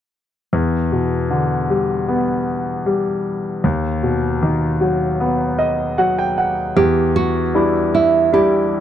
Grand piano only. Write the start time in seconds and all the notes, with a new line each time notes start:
0.53 E2
0.92 B2
1.30 D3
1.70 G3
2.08 B3
2.86 G3
3.64 D#2
4.03 B2
4.43 D#3
4.81 F#3
5.20 B3
5.59 D#5
5.98 F#3 F#5
6.19 G5
6.38 F#5
6.77 E2
7.54 G3 D4 E4
8.32 G3 D4 E4